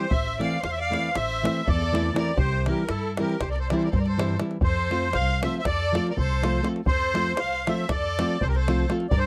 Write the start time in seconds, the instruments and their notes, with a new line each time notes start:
Already playing: accordion C5
0.10 upright bass A1, violin C5, accordion E5, davul low
0.26 davul high
0.39 nylon-string guitar E3 A3 C4 E4, violin D5, accordion F5, davul high
0.53 davul high
0.61 upright bass E2, violin C5, accordion F5, davul high
0.69 violin C5, accordion E5
0.79 violin D5, accordion F5, davul high
0.90 nylon-string guitar E3 A3 C4 E4, davul high
1.13 upright bass A1, violin C5, accordion E5, davul high
1.43 nylon-string guitar E3 A3 C4 E4, davul high
1.57 davul high
1.66 upright bass E2, violin A4, accordion D5, davul low
1.82 davul high
1.92 nylon-string guitar E3 A3 C4 E4, davul high
2.06 davul high
2.14 nylon-string guitar E3 A3 C4 E4, violin A#4, accordion D5, davul high
2.36 upright bass C2, violin G4, accordion C5, davul low
2.53 davul high
2.66 nylon-string guitar E3 G3 C4 E4, violin G4, accordion A#4, davul high
2.78 davul high
2.88 upright bass G2, violin E4, accordion A4, davul high
3.03 davul high
3.17 nylon-string guitar E3 G3 C4 E4, violin G4, accordion A#4, davul high
3.29 davul high
3.40 upright bass C2, violin G4, accordion C5, davul high, davul low
3.50 violin A#4, accordion D5
3.56 violin A4, davul high
3.60 accordion C5
3.68 nylon-string guitar E3 G3, violin A#4, accordion D5, davul high
3.73 nylon-string guitar C4 E4, accordion C5
3.77 violin A4
3.82 violin A#4, accordion D5, davul high
3.91 upright bass G2, violin A4, accordion C5, davul low
3.98 violin A#4, accordion D5
4.06 violin A4, accordion C5, davul high
4.18 nylon-string guitar E3 G3 C4 E4, davul high
4.29 davul high
4.40 nylon-string guitar E3 G3 C4 E4, davul high
4.51 davul high
4.61 upright bass F2, violin A4, accordion C5, davul low
4.76 davul high
4.90 nylon-string guitar F3 A3 C4 F4, davul high
5.02 davul high
5.13 upright bass C2, violin C5, accordion F5, davul high
5.29 davul high
5.42 nylon-string guitar F3 A3 C4 F4, violin C5, accordion E5, davul high
5.54 davul high
5.59 violin C5, accordion E5
5.65 upright bass F2, violin A4, accordion D5, davul high, davul low
5.80 davul high
5.92 nylon-string guitar F3 A3 C4 F4, davul high
6.07 violin A#4, accordion D5, davul high
6.17 upright bass C2, violin A4, accordion C5, davul low
6.30 davul high
6.42 nylon-string guitar F3 A3 C4 F4, davul high
6.63 nylon-string guitar F3 A3 C4 F4, davul high
6.76 davul high
6.85 upright bass F2, violin A4, accordion C5, davul low
7.01 davul high
7.14 nylon-string guitar F3 A3 C4 F4, davul high
7.26 davul high
7.37 upright bass C2, violin C5, accordion F5, davul high
7.52 davul high
7.67 nylon-string guitar F3 A3 C4 F4, violin C5, accordion E5, davul high
7.78 davul high
7.89 upright bass F2, violin A4, accordion D5, davul high, davul low
8.04 davul high
8.19 nylon-string guitar F3 A3 C4 F4, davul high
8.30 davul high
8.41 upright bass C2, violin A4, accordion C5, davul low
8.49 violin G4, accordion A#4
8.55 violin A4, accordion C5, davul high
8.68 nylon-string guitar F3 A3 C4 F4, davul high
8.89 nylon-string guitar F3 A3 C4 F4, davul high
9.00 davul high
9.10 upright bass G2, violin A#4, accordion D5, davul low
9.18 violin A4, accordion C5